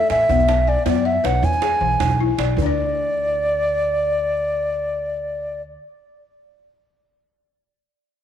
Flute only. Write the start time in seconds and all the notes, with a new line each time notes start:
Already playing: E5
0.11 E5
0.69 D5
0.88 D5
1.06 E5
1.25 F#5
1.45 G#5
2.58 D5